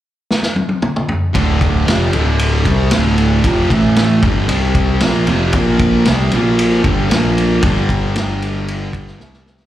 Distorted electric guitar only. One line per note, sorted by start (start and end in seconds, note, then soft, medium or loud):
1.33 1.86 D2 medium
1.33 1.86 A2 medium
1.33 1.87 D3 loud
1.86 2.12 F2 medium
1.86 2.13 C3 medium
1.86 2.13 F3 medium
2.12 2.64 D2 medium
2.12 2.65 A2 medium
2.12 2.66 D3 medium
2.64 2.90 C3 medium
2.64 2.91 G3 loud
2.64 2.92 C4 loud
2.92 3.44 D2 loud
2.92 3.44 A2 medium
2.92 3.45 D3 loud
3.45 3.69 F2 medium
3.45 3.70 C3 medium
3.45 3.71 F3 loud
3.70 4.22 A2 loud
3.70 4.22 E3 medium
3.70 4.23 A3 loud
4.22 4.47 G2 medium
4.22 4.49 D3 medium
4.22 4.48 G3 loud
4.47 5.00 C3 medium
4.47 5.01 G3 loud
4.47 5.01 C4 loud
5.02 5.27 A#2 medium
5.02 5.28 F3 loud
5.02 5.28 A#3 loud
5.27 5.53 F2 medium
5.27 5.53 C3 loud
5.27 5.54 F3 loud
5.55 6.06 A#2 medium
5.55 6.06 F3 loud
5.55 6.07 A#3 loud
6.07 6.32 C3 medium
6.07 6.32 G3 loud
6.07 6.33 C4 medium
6.33 6.82 A#2 medium
6.33 6.83 F3 loud
6.33 6.84 A#3 loud
6.83 7.08 G2 medium
6.83 7.09 D3 medium
6.83 7.10 G3 loud
7.09 7.61 A#2 loud
7.09 7.62 F3 loud
7.09 7.62 A#3 loud
7.62 9.17 G2 loud
7.62 9.18 D3 loud
7.62 9.17 G3 loud
9.17 9.66 C3 loud
9.17 9.66 G3 loud
9.17 9.66 C4 medium